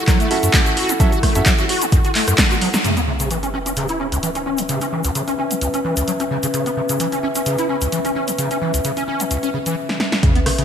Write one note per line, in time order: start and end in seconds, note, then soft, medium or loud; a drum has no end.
0.00 2.81 E4 medium
0.00 2.81 A4 medium
0.00 2.81 F#5 medium
0.07 0.18 F#3 loud
0.07 kick loud
0.07 cross-stick medium
0.07 clap medium
0.07 closed hi-hat medium
0.07 shaker medium
0.20 0.29 A3 medium
0.20 closed hi-hat soft
0.20 shaker soft
0.31 0.97 C#4 medium
0.31 0.97 F#4 medium
0.31 0.38 F#4 medium
0.31 0.97 A4 medium
0.31 0.97 E5 medium
0.31 open hi-hat loud
0.43 0.49 F#2 loud
0.43 closed hi-hat medium
0.43 shaker medium
0.53 0.61 A3 medium
0.53 kick loud
0.53 clap loud
0.53 closed hi-hat medium
0.53 shaker medium
0.66 0.72 F#4 medium
0.66 closed hi-hat soft
0.66 shaker soft
0.77 0.91 F#4 medium
0.77 open hi-hat medium
0.89 0.93 F#3 loud
0.89 closed hi-hat medium
0.89 shaker medium
1.00 1.10 F#3 loud
1.00 1.09 C#4 medium
1.00 1.09 F#4 medium
1.00 1.09 A4 medium
1.00 1.09 E5 medium
1.00 kick loud
1.00 closed hi-hat medium
1.00 shaker medium
1.12 1.18 F#4 medium
1.12 closed hi-hat soft
1.12 shaker soft
1.23 1.33 A3 medium
1.23 kick medium
1.23 cross-stick medium
1.23 open hi-hat loud
1.35 1.41 F#2 loud
1.35 1.43 C#4 medium
1.35 1.43 F#4 medium
1.35 1.43 A4 medium
1.35 1.43 E5 medium
1.35 closed hi-hat medium
1.35 shaker medium
1.46 1.53 F#3 medium
1.46 kick loud
1.46 clap loud
1.46 closed hi-hat medium
1.46 shaker medium
1.58 1.64 F#4 medium
1.58 closed hi-hat soft
1.58 shaker soft
1.69 1.83 F#4 medium
1.69 open hi-hat medium
1.82 1.85 F#3 loud
1.82 closed hi-hat medium
1.82 shaker medium
1.92 1.99 F#2 medium
1.92 kick loud
1.92 closed hi-hat medium
1.92 shaker medium
2.04 2.11 F#4 medium
2.04 closed hi-hat soft
2.04 shaker soft
2.15 2.26 A3 medium
2.15 clap medium
2.15 open hi-hat loud
2.28 2.34 F#2 loud
2.28 cross-stick medium
2.28 closed hi-hat medium
2.28 shaker medium
2.38 2.42 B3 medium
2.38 kick loud
2.38 snare loud
2.38 clap loud
2.38 closed hi-hat medium
2.38 shaker medium
2.51 2.54 F#4 medium
2.51 closed hi-hat soft
2.51 shaker soft
2.61 2.68 F#3 loud
2.61 open hi-hat medium
2.74 2.77 F#3 loud
2.74 snare medium
2.74 closed hi-hat medium
2.74 shaker medium
2.84 2.95 C#3 medium
2.84 10.19 C#4 medium
2.84 10.19 B4 medium
2.84 10.19 E5 medium
2.84 closed hi-hat medium
2.84 sub drop medium
2.84 shaker medium
2.97 3.00 B3 medium
2.97 closed hi-hat soft
2.97 shaker soft
3.08 3.12 C#3 medium
3.20 3.29 C#3 medium
3.20 closed hi-hat medium
3.20 shaker medium
3.31 3.37 E3 medium
3.31 closed hi-hat medium
3.31 shaker medium
3.43 3.49 C#4 medium
3.43 closed hi-hat soft
3.43 shaker soft
3.54 3.58 C#4 loud
3.66 3.72 C#4 medium
3.66 closed hi-hat medium
3.66 shaker medium
3.76 3.87 C#3 loud
3.76 closed hi-hat medium
3.76 shaker medium
3.88 3.98 E4 medium
3.88 closed hi-hat soft
3.88 shaker soft
4.00 4.07 C#4 medium
4.12 4.18 C#2 loud
4.12 closed hi-hat soft
4.12 shaker medium
4.23 4.30 E3 medium
4.23 closed hi-hat medium
4.23 shaker medium
4.35 4.41 C#4 medium
4.35 closed hi-hat soft
4.35 shaker soft
4.46 4.60 C#4 medium
4.58 4.62 C#3 loud
4.58 closed hi-hat medium
4.58 shaker medium
4.69 4.79 C#3 loud
4.69 closed hi-hat medium
4.69 shaker medium
4.81 4.87 C#4 medium
4.81 closed hi-hat soft
4.81 shaker soft
4.92 5.02 E3 medium
5.04 5.10 C#2 loud
5.04 closed hi-hat soft
5.04 shaker medium
5.15 5.22 C#3 medium
5.15 closed hi-hat medium
5.15 shaker medium
5.27 5.34 C#4 medium
5.27 closed hi-hat soft
5.27 shaker soft
5.38 5.52 C#4 medium
5.51 5.54 C#3 medium
5.51 closed hi-hat soft
5.51 shaker medium
5.61 5.68 C#2 medium
5.61 closed hi-hat medium
5.61 shaker medium
5.74 5.80 C#4 medium
5.74 closed hi-hat soft
5.74 shaker soft
5.84 5.95 E3 medium
5.97 6.03 C#2 loud
5.97 closed hi-hat soft
5.97 shaker medium
6.08 6.12 F#3 medium
6.08 closed hi-hat medium
6.08 shaker medium
6.20 6.24 C#4 medium
6.20 closed hi-hat soft
6.20 shaker soft
6.31 6.38 C#3 loud
6.43 6.47 C#3 loud
6.43 closed hi-hat soft
6.43 shaker medium
6.54 6.64 C#3 medium
6.54 closed hi-hat medium
6.54 shaker medium
6.66 6.70 B3 medium
6.66 closed hi-hat soft
6.66 shaker soft
6.77 6.81 C#3 medium
6.89 6.98 C#3 medium
6.89 closed hi-hat soft
6.89 shaker medium
7.00 7.07 E3 medium
7.00 closed hi-hat medium
7.00 shaker medium
7.12 7.18 C#4 medium
7.12 closed hi-hat soft
7.12 shaker soft
7.23 7.27 C#4 medium
7.35 7.41 C#4 medium
7.35 closed hi-hat soft
7.35 shaker medium
7.46 7.56 C#3 loud
7.46 closed hi-hat medium
7.46 shaker medium
7.58 7.67 E4 medium
7.58 closed hi-hat soft
7.58 shaker soft
7.69 7.76 C#4 medium
7.81 7.87 C#2 loud
7.81 closed hi-hat soft
7.81 shaker medium
7.92 7.99 E3 medium
7.92 closed hi-hat medium
7.92 shaker medium
8.05 8.11 C#4 medium
8.05 closed hi-hat soft
8.05 shaker soft
8.15 8.29 C#4 medium
8.28 8.31 C#3 loud
8.28 closed hi-hat soft
8.28 shaker medium
8.38 8.49 C#3 loud
8.38 closed hi-hat medium
8.38 shaker medium
8.51 8.57 C#4 medium
8.51 closed hi-hat soft
8.51 shaker soft
8.61 8.72 E3 medium
8.74 8.80 C#2 loud
8.74 closed hi-hat soft
8.74 shaker medium
8.84 8.91 C#3 medium
8.84 closed hi-hat medium
8.84 shaker medium
8.97 9.03 C#4 medium
8.97 closed hi-hat soft
8.97 shaker soft
9.08 9.22 C#4 medium
9.20 9.24 C#3 loud
9.20 closed hi-hat soft
9.20 shaker medium
9.31 9.38 C#2 medium
9.31 closed hi-hat medium
9.31 shaker medium
9.43 9.49 C#4 medium
9.43 closed hi-hat soft
9.43 shaker soft
9.54 9.58 C#3 medium
9.66 9.75 E3 medium
9.66 closed hi-hat soft
9.66 shaker medium
9.89 snare soft
10.00 snare medium
10.12 snare medium
10.23 10.33 C#3 medium
10.23 10.65 C#4 medium
10.23 10.65 B4 medium
10.23 10.65 E5 medium
10.23 kick loud
10.23 closed hi-hat medium
10.23 sub drop medium
10.35 10.39 B3 medium
10.35 closed hi-hat soft
10.46 10.50 C#3 medium
10.46 cross-stick medium
10.46 open hi-hat loud
10.58 10.65 C#3 medium
10.58 closed hi-hat medium